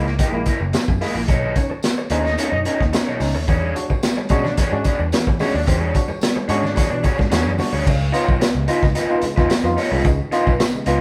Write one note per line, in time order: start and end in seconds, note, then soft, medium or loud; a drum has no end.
0.00 0.16 C#2 medium
0.00 0.10 A#3 loud
0.06 muted overdriven electric guitar stroke medium
0.06 snare soft
0.19 0.33 F#3 medium
0.19 0.39 A#3 medium
0.19 0.33 E4 medium
0.19 0.32 G#4 loud
0.19 kick loud
0.19 snare soft
0.19 closed hi-hat loud
0.19 tambourine medium
0.33 0.45 A#1 medium
0.33 0.46 G#3 medium
0.33 0.46 A#3 medium
0.33 0.46 E4 medium
0.33 muted overdriven electric guitar stroke soft
0.46 0.61 A#3 medium
0.46 0.53 A#3 soft
0.46 0.60 E4 medium
0.46 0.53 E4 soft
0.46 0.61 A#4 medium
0.46 kick medium
0.46 closed hi-hat medium
0.46 tambourine medium
0.61 0.72 F#1 medium
0.61 muted overdriven electric guitar stroke soft
0.73 0.88 F#3 medium
0.73 muted overdriven electric guitar stroke soft
0.73 snare loud
0.73 closed hi-hat medium
0.73 tambourine medium
0.88 1.00 F#2 loud
0.88 muted overdriven electric guitar stroke soft
0.88 kick loud
1.01 1.16 G#3 medium
1.01 1.15 A#3 medium
1.01 1.20 A#3 medium
1.01 1.14 E4 medium
1.01 1.16 E4 medium
1.01 1.15 G#4 medium
1.01 snare soft
1.01 open hi-hat medium
1.01 tambourine medium
1.15 1.27 A#1 loud
1.15 1.21 A#3 soft
1.15 1.21 E4 soft
1.15 muted overdriven electric guitar stroke soft
1.28 1.53 B1 loud
1.28 1.43 B2 medium
1.28 1.43 F#3 medium
1.28 1.54 D#4 medium
1.28 1.54 A4 medium
1.28 1.55 C#5 loud
1.28 kick loud
1.28 closed hi-hat medium
1.28 tambourine medium
1.56 1.70 C#4 medium
1.56 1.71 D#4 medium
1.56 kick medium
1.56 closed hi-hat medium
1.56 tambourine medium
1.70 muted overdriven electric guitar stroke medium
1.70 muted picked electric bass stroke soft
1.83 snare loud
1.83 closed hi-hat medium
1.83 tambourine loud
1.98 muted overdriven electric guitar stroke soft
2.10 2.35 D#2 medium
2.10 2.25 A3 medium
2.10 2.26 C#4 medium
2.10 2.31 D#4 medium
2.10 2.26 D#4 loud
2.10 2.25 A4 loud
2.10 2.25 C#5 medium
2.10 closed hi-hat medium
2.10 tambourine soft
2.25 muted overdriven electric guitar stroke soft
2.25 snare soft
2.25 tambourine soft
2.38 2.53 C#4 medium
2.38 2.57 D#4 medium
2.38 2.53 D#4 medium
2.38 2.52 A4 medium
2.38 2.51 C#5 medium
2.38 snare soft
2.38 closed hi-hat loud
2.38 tambourine medium
2.52 2.64 F#2 medium
2.52 2.66 B2 medium
2.52 2.66 F#3 medium
2.52 muted overdriven electric guitar stroke soft
2.65 2.80 C#4 medium
2.65 2.81 D#4 medium
2.65 2.80 D#4 medium
2.65 2.80 A4 medium
2.65 2.79 C#5 medium
2.65 closed hi-hat medium
2.65 tambourine medium
2.80 2.92 D#2 medium
2.80 muted overdriven electric guitar stroke soft
2.80 kick medium
2.80 snare soft
2.93 3.08 C#4 medium
2.93 3.08 D#4 medium
2.93 muted overdriven electric guitar stroke soft
2.93 snare loud
2.93 closed hi-hat medium
2.93 tambourine medium
3.07 3.21 B2 medium
3.07 3.21 F#3 medium
3.07 3.18 D#4 medium
3.07 3.19 A4 medium
3.07 3.19 C#5 medium
3.19 3.35 C#2 medium
3.19 3.35 C#4 medium
3.19 3.35 D#4 medium
3.19 muted overdriven electric guitar stroke soft
3.19 snare soft
3.19 open hi-hat medium
3.19 tambourine medium
3.35 3.47 D#2 medium
3.35 muted overdriven electric guitar stroke soft
3.47 3.72 E2 loud
3.47 3.63 E3 medium
3.47 3.73 D4 medium
3.47 3.74 G#4 medium
3.47 3.74 C#5 medium
3.47 kick loud
3.47 closed hi-hat medium
3.47 tambourine medium
3.47 low conga medium
3.62 high conga medium
3.75 3.90 D4 medium
3.75 3.90 F#4 medium
3.75 closed hi-hat medium
3.75 tambourine medium
3.75 muted conga soft
3.89 muted picked electric bass stroke soft
3.89 muted overdriven electric guitar stroke soft
3.89 kick medium
3.89 tambourine soft
3.89 high conga medium
4.03 snare loud
4.03 closed hi-hat medium
4.03 tambourine loud
4.03 muted conga soft
4.03 high conga medium
4.17 muted overdriven electric guitar stroke soft
4.17 tambourine soft
4.17 high conga medium
4.29 4.54 B2 medium
4.29 4.45 G#3 medium
4.29 4.45 C#4 medium
4.29 4.49 D4 medium
4.29 4.45 D4 medium
4.29 4.45 F#4 medium
4.29 4.45 G#4 loud
4.29 4.44 C#5 loud
4.29 kick loud
4.29 closed hi-hat medium
4.29 tambourine medium
4.44 muted overdriven electric guitar stroke soft
4.44 snare soft
4.44 tambourine soft
4.44 low conga medium
4.57 4.72 E3 medium
4.57 4.76 D4 loud
4.57 4.72 G#4 medium
4.57 4.71 C#5 loud
4.57 kick loud
4.57 snare soft
4.57 closed hi-hat loud
4.57 tambourine medium
4.57 muted conga soft
4.72 4.84 G#2 loud
4.72 4.85 G#3 medium
4.72 4.85 C#4 medium
4.72 4.84 D4 medium
4.72 4.84 F#4 medium
4.72 muted overdriven electric guitar stroke medium
4.84 5.00 D4 medium
4.84 4.91 D4 soft
4.84 4.91 F#4 soft
4.84 4.99 G#4 medium
4.84 4.99 D5 medium
4.84 kick medium
4.84 closed hi-hat medium
4.84 tambourine soft
4.84 muted conga soft
4.99 5.11 E2 medium
4.99 muted overdriven electric guitar stroke soft
4.99 high conga medium
5.12 5.27 E3 medium
5.12 muted overdriven electric guitar stroke soft
5.12 snare loud
5.12 closed hi-hat loud
5.12 tambourine medium
5.12 muted conga soft
5.27 5.38 E3 loud
5.27 muted overdriven electric guitar stroke soft
5.27 kick loud
5.39 5.54 G#3 medium
5.39 5.54 C#4 medium
5.39 5.53 D4 medium
5.39 5.58 D4 medium
5.39 5.53 F#4 medium
5.39 5.54 G#4 medium
5.39 5.54 C#5 medium
5.39 snare soft
5.39 open hi-hat medium
5.39 tambourine medium
5.39 muted conga soft
5.39 high conga medium
5.39 low conga medium
5.54 5.66 D#2 medium
5.54 5.60 D4 soft
5.54 5.60 F#4 soft
5.54 muted overdriven electric guitar stroke soft
5.67 5.91 E2 loud
5.67 5.82 E3 medium
5.67 5.78 C#4 medium
5.67 5.79 G4 loud
5.67 5.93 C#5 loud
5.67 kick loud
5.67 closed hi-hat medium
5.67 tambourine medium
5.67 muted conga soft
5.67 low conga medium
5.78 5.92 D4 medium
5.78 5.93 G#4 loud
5.78 high conga medium
5.94 6.09 D4 medium
5.94 6.09 F#4 medium
5.94 kick medium
5.94 closed hi-hat medium
5.94 tambourine medium
5.94 muted conga soft
6.08 muted overdriven electric guitar stroke soft
6.08 muted picked electric bass stroke soft
6.08 tambourine soft
6.08 high conga medium
6.21 snare loud
6.21 closed hi-hat loud
6.21 tambourine loud
6.21 muted conga soft
6.21 high conga medium
6.36 muted overdriven electric guitar stroke medium
6.36 high conga medium
6.48 6.73 G#2 loud
6.48 6.64 G#3 medium
6.48 6.64 C#4 medium
6.48 6.67 D4 medium
6.48 6.64 D4 medium
6.48 6.64 F#4 loud
6.48 6.63 G#4 medium
6.48 6.62 C#5 medium
6.48 closed hi-hat medium
6.48 tambourine soft
6.63 muted overdriven electric guitar stroke medium
6.63 snare soft
6.63 tambourine soft
6.63 low conga medium
6.75 6.90 E3 loud
6.75 6.94 D4 medium
6.75 6.91 D4 medium
6.75 6.91 F#4 medium
6.75 6.91 G#4 medium
6.75 6.90 C#5 medium
6.75 kick loud
6.75 snare soft
6.75 closed hi-hat loud
6.75 tambourine medium
6.90 7.02 B2 medium
6.90 7.04 E3 medium
6.90 muted overdriven electric guitar stroke soft
7.03 7.18 D4 medium
7.03 7.19 D4 medium
7.03 7.19 F#4 medium
7.03 7.18 G#4 medium
7.03 7.16 C#5 medium
7.03 kick medium
7.03 closed hi-hat medium
7.03 tambourine medium
7.03 muted conga soft
7.17 7.30 G#2 medium
7.17 muted overdriven electric guitar stroke soft
7.17 kick medium
7.17 snare soft
7.17 high conga medium
7.30 7.44 E2 medium
7.30 7.49 D4 medium
7.30 7.46 D4 medium
7.30 7.46 F#4 medium
7.30 7.50 G#4 loud
7.30 7.50 C#5 loud
7.30 snare loud
7.30 closed hi-hat medium
7.30 tambourine loud
7.46 7.57 F#2 medium
7.46 7.59 E3 medium
7.58 7.73 D4 medium
7.58 7.74 F#4 medium
7.58 muted overdriven electric guitar stroke soft
7.58 snare soft
7.58 open hi-hat medium
7.58 tambourine medium
7.58 high conga medium
7.58 low conga medium
7.73 7.84 D2 medium
7.73 7.87 D4 soft
7.73 7.86 G#4 soft
7.73 7.86 C#5 medium
7.86 8.11 C#2 loud
7.86 8.01 C#3 medium
7.86 8.01 G#3 medium
7.86 kick loud
7.86 crash medium
7.86 tambourine medium
8.12 8.28 B3 medium
8.12 8.31 D#4 medium
8.12 8.27 D#4 medium
8.12 8.32 F4 medium
8.12 8.27 F4 medium
8.12 8.32 C#5 medium
8.12 closed hi-hat medium
8.12 tambourine medium
8.28 8.40 B1 medium
8.28 8.33 D#4 soft
8.28 8.33 F4 soft
8.28 kick medium
8.40 8.47 D#4 soft
8.40 8.47 F4 soft
8.40 muted overdriven electric guitar stroke soft
8.40 snare loud
8.40 closed hi-hat medium
8.40 tambourine loud
8.55 8.67 C#2 medium
8.55 8.68 C#3 medium
8.55 8.68 G#3 medium
8.68 8.82 B3 medium
8.68 8.83 D#4 medium
8.68 8.83 F4 medium
8.68 8.82 B4 medium
8.68 closed hi-hat medium
8.68 tambourine soft
8.83 8.94 C#2 medium
8.83 muted overdriven electric guitar stroke soft
8.83 kick loud
8.83 snare soft
8.83 tambourine soft
8.95 9.14 D#4 medium
8.95 9.14 F4 loud
8.95 9.15 B4 loud
8.95 snare soft
8.95 closed hi-hat loud
8.95 tambourine medium
9.10 9.23 B3 medium
9.10 9.23 D#4 medium
9.10 9.23 F4 medium
9.21 9.37 C#3 medium
9.21 9.37 G#3 medium
9.21 muted overdriven electric guitar stroke soft
9.21 muted picked electric bass stroke medium
9.21 closed hi-hat medium
9.21 tambourine medium
9.36 9.49 E2 medium
9.36 9.50 B3 medium
9.36 9.50 D#4 medium
9.36 9.48 D#4 medium
9.36 9.50 F4 medium
9.36 9.49 F4 medium
9.36 9.50 B4 medium
9.36 kick medium
9.36 snare soft
9.36 tambourine soft
9.49 muted overdriven electric guitar stroke soft
9.49 muted picked electric bass stroke soft
9.49 snare loud
9.49 closed hi-hat medium
9.49 tambourine medium
9.64 9.76 F2 medium
9.64 9.78 B3 medium
9.64 9.78 D#4 medium
9.64 9.78 F4 medium
9.64 muted overdriven electric guitar stroke soft
9.77 9.91 D#4 medium
9.77 9.91 F4 medium
9.77 9.91 C#5 medium
9.77 snare soft
9.77 open hi-hat medium
9.77 tambourine medium
9.91 10.05 C2 medium
9.91 10.04 C#3 medium
9.91 10.04 G#3 medium
9.91 10.05 D#4 soft
9.91 10.05 F4 medium
9.91 10.05 B4 medium
10.04 10.18 C#2 loud
10.04 10.20 C#3 medium
10.04 10.20 G#3 medium
10.04 kick loud
10.04 closed hi-hat medium
10.04 tambourine medium
10.32 10.47 B3 medium
10.32 10.50 D#4 medium
10.32 10.46 D#4 medium
10.32 10.51 F4 medium
10.32 10.46 F4 loud
10.32 10.51 B4 medium
10.32 closed hi-hat medium
10.32 tambourine medium
10.47 10.58 B1 medium
10.47 10.52 D#4 soft
10.47 10.52 F4 soft
10.47 kick medium
10.47 tambourine soft
10.59 10.66 D#4 soft
10.59 10.66 F4 soft
10.59 muted overdriven electric guitar stroke soft
10.59 snare loud
10.59 closed hi-hat medium
10.59 tambourine loud
10.75 10.87 C#3 medium
10.75 10.87 G#3 medium
10.75 tambourine soft
10.86 11.01 C#2 loud
10.86 11.01 B3 medium
10.86 11.01 D#4 medium
10.86 11.01 F4 medium
10.86 11.00 B4 medium
10.86 closed hi-hat medium
10.86 tambourine soft